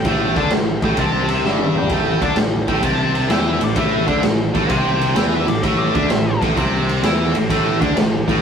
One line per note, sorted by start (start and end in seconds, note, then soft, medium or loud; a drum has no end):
0.00 0.35 G5 medium
0.05 0.34 A1 medium
0.05 0.36 A2 loud
0.05 0.36 A3 loud
0.05 kick loud
0.05 ride medium
0.36 0.50 D2 medium
0.36 0.51 D3 medium
0.36 0.51 D4 medium
0.36 0.51 A5 loud
0.36 kick loud
0.36 ride medium
0.50 0.81 A1 medium
0.50 0.77 A2 medium
0.50 snare loud
0.50 ride medium
0.82 0.96 A1 medium
0.82 0.97 A2 medium
0.82 0.98 A3 medium
0.82 0.98 G5 medium
0.82 kick loud
0.82 ride medium
0.97 1.41 C2 loud
0.97 1.44 C3 medium
0.97 1.45 C4 medium
0.97 1.29 A5 medium
0.97 kick loud
0.97 ride medium
1.29 1.75 E5 medium
1.29 ride medium
1.43 1.87 G1 medium
1.43 1.91 G2 medium
1.43 1.91 G3 loud
1.43 snare medium
1.59 high tom medium
1.75 2.22 G5 medium
1.75 mid tom medium
1.82 floor tom medium
1.90 2.20 A1 medium
1.90 2.21 A2 medium
1.90 2.22 A3 loud
1.90 kick loud
1.90 ride medium
2.21 2.36 D2 medium
2.21 2.36 D3 medium
2.21 2.37 D4 medium
2.21 2.37 A5 loud
2.21 kick loud
2.21 ride medium
2.36 2.67 A1 medium
2.36 2.63 A2 medium
2.36 snare loud
2.36 ride medium
2.67 2.82 A1 medium
2.67 2.82 A2 medium
2.67 2.83 A3 medium
2.67 2.85 G5 medium
2.67 kick loud
2.67 ride medium
2.83 3.27 C2 medium
2.83 3.29 C3 medium
2.83 3.30 C4 medium
2.83 3.30 A5 loud
2.83 kick loud
2.83 ride medium
3.15 ride medium
3.29 3.60 E2 loud
3.29 3.60 E3 medium
3.29 3.61 E4 medium
3.29 3.47 G5 medium
3.29 snare loud
3.29 ride loud
3.47 3.64 E5 loud
3.60 3.75 A1 medium
3.60 3.73 A2 medium
3.60 3.79 D5 medium
3.60 ride medium
3.76 4.06 A1 loud
3.76 4.06 A2 loud
3.76 4.07 A3 loud
3.76 4.23 E5 loud
3.76 kick loud
3.76 ride medium
4.07 4.22 D2 medium
4.07 4.22 D3 medium
4.07 4.23 D4 medium
4.07 kick medium
4.07 ride medium
4.22 4.53 A1 medium
4.22 4.48 A2 medium
4.22 snare loud
4.22 ride medium
4.54 4.69 A1 loud
4.54 4.69 A2 medium
4.54 4.70 A3 medium
4.54 kick loud
4.54 ride medium
4.69 5.13 C2 medium
4.69 5.15 C3 medium
4.69 5.16 C4 medium
4.69 5.31 G5 loud
4.69 kick loud
4.69 ride medium
5.01 ride medium
5.15 5.46 E2 medium
5.15 5.46 E3 loud
5.15 5.47 E4 loud
5.15 snare loud
5.15 ride medium
5.34 5.48 E5 medium
5.47 5.62 A1 medium
5.47 5.59 A2 medium
5.47 5.63 D5 medium
5.47 ride medium
5.63 5.93 A1 medium
5.63 5.94 A2 loud
5.63 5.94 A3 loud
5.63 5.78 E5 loud
5.63 kick loud
5.63 ride medium
5.78 5.94 D5 loud
5.94 6.09 D2 medium
5.94 6.09 D3 medium
5.94 6.10 D4 medium
5.94 6.40 E5 loud
5.94 kick loud
5.94 ride medium
6.10 6.39 A1 medium
6.10 6.35 A2 medium
6.10 snare loud
6.10 ride medium
6.42 6.56 A1 medium
6.42 6.56 A2 medium
6.42 6.57 A3 medium
6.42 kick loud
6.42 ride medium
6.56 7.00 C2 loud
6.56 7.02 C3 medium
6.56 7.03 C4 medium
6.56 kick loud
6.56 ride medium
6.89 ride medium
7.03 7.32 E2 loud
7.03 7.34 E3 loud
7.03 7.34 E4 loud
7.03 snare loud
7.03 ride loud
7.34 7.48 A1 medium
7.34 7.47 A2 medium
7.34 ride medium
7.49 7.79 A1 medium
7.49 7.81 A2 loud
7.49 7.81 A3 loud
7.49 kick medium
7.49 ride loud
7.81 7.95 D2 medium
7.81 7.96 D3 medium
7.81 7.96 D4 medium
7.81 kick loud
7.81 ride medium
7.96 8.26 A1 medium
7.96 8.22 A2 medium
7.96 snare loud
7.96 ride medium
8.28 8.42 A1 medium
8.28 8.42 A2 medium
8.28 8.42 A3 medium
8.28 kick loud
8.28 ride medium